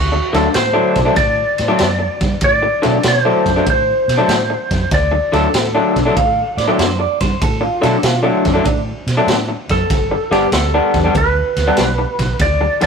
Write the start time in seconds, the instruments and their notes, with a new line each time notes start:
Already playing: fingered electric bass D2, electric slide guitar F#4
0.12 muted clean electric guitar stroke
0.33 fingered electric bass D2, clean electric guitar D3 F#3 A3 D4, electric slide guitar A4, snare, ride
0.53 fingered electric bass A2, electric slide guitar C5, muted clean electric guitar stroke, snare, ride
0.73 clean electric guitar D3 F#3 A3 D4
0.96 fingered electric bass B2, kick, snare, ride
1.05 clean electric guitar D3 F#3 A3 D4
1.16 fingered electric bass A2, electric slide guitar D5, muted clean electric guitar stroke, kick, snare, ride
1.58 fingered electric bass A2, snare, ride
1.68 clean electric guitar D3 F#3 A3 D4
1.79 fingered electric bass F#2, snare, ride
1.99 muted clean electric guitar stroke
2.21 fingered electric bass G2, kick, snare, ride
2.41 fingered electric bass A2, electric slide guitar D5, kick, ride
2.62 muted clean electric guitar stroke
2.82 fingered electric bass B2, clean electric guitar D3 F#3 A3 D4, snare, ride
3.03 fingered electric bass B2, muted clean electric guitar stroke, snare, ride
3.08 electric slide guitar C5
3.25 clean electric guitar D3 F#3 A3 D4
3.46 fingered electric bass F#2, kick, snare, ride
3.56 clean electric guitar D3 F#3 A3 D4
3.66 fingered electric bass A2, muted clean electric guitar stroke, kick, ride
3.70 electric slide guitar C5
4.08 fingered electric bass B2, snare, ride
4.18 clean electric guitar D3 F#3 A3 D4
4.28 fingered electric bass A2, snare, ride
4.50 muted clean electric guitar stroke
4.71 fingered electric bass F#2, kick, snare, ride
4.91 fingered electric bass D2, electric slide guitar D5, kick, snare, ride
5.12 muted clean electric guitar stroke
5.32 fingered electric bass D2, clean electric guitar D3 F#3 A3 D4, electric slide guitar A4, snare, ride
5.54 fingered electric bass A2, muted clean electric guitar stroke, snare, ride
5.75 clean electric guitar D3 F#3 A3 D4
5.96 fingered electric bass B2, kick, snare, ride
6.05 clean electric guitar D3 F#3 A3 D4
6.16 fingered electric bass A2, clean electric guitar F5, muted clean electric guitar stroke, kick, ride
6.57 fingered electric bass A2, clean electric guitar D5, snare, ride
6.68 clean electric guitar D3 F#3 A3 D4
6.79 fingered electric bass F#2, clean electric guitar C5, snare, ride
6.99 clean electric guitar D5, muted clean electric guitar stroke
7.21 fingered electric bass G2, clean electric guitar C5, kick, snare, ride
7.42 fingered electric bass A2, clean electric guitar A4, kick, ride
7.61 clean electric guitar F4, muted clean electric guitar stroke
7.82 fingered electric bass B2, clean electric guitar D3 F#3 A3 D4 A4, snare, ride
8.03 fingered electric bass B2, clean electric guitar F4, muted clean electric guitar stroke, snare, ride
8.23 clean electric guitar D3 F#3 A3 D4
8.45 fingered electric bass F#2, clean electric guitar D4, kick, snare, ride
8.54 clean electric guitar D3 F#3 A3 D4
8.65 fingered electric bass A2, muted clean electric guitar stroke, kick, ride
9.07 fingered electric bass B2, snare, ride
9.17 clean electric guitar D3 F#3 A3 D4
9.27 fingered electric bass A2, snare, ride
9.49 muted clean electric guitar stroke
9.69 fingered electric bass F#2, electric slide guitar A4, kick, snare, ride
9.90 fingered electric bass G1, kick, snare, ride
10.11 muted clean electric guitar stroke
10.31 fingered electric bass G1, clean electric guitar G2 G3 B3 D4, electric slide guitar G4, snare, ride
10.52 fingered electric bass D2, electric slide guitar A4, muted clean electric guitar stroke, snare, ride
10.74 clean electric guitar G2 G3 B3 D4
10.94 fingered electric bass E2, kick, snare, ride
11.04 clean electric guitar G2 G3 B3 D4
11.15 fingered electric bass D2, electric slide guitar B4, muted clean electric guitar stroke, kick, ride
11.57 fingered electric bass D2, snare, ride
11.68 clean electric guitar G2 G3 B3 D4
11.77 fingered electric bass B1, snare, ride
11.98 muted clean electric guitar stroke
12.19 fingered electric bass B1, kick, snare, ride
12.39 fingered electric bass D2, electric slide guitar D5, kick, snare, ride
12.61 muted clean electric guitar stroke
12.81 fingered electric bass E2, clean electric guitar G2 G3 B3 D4, snare, ride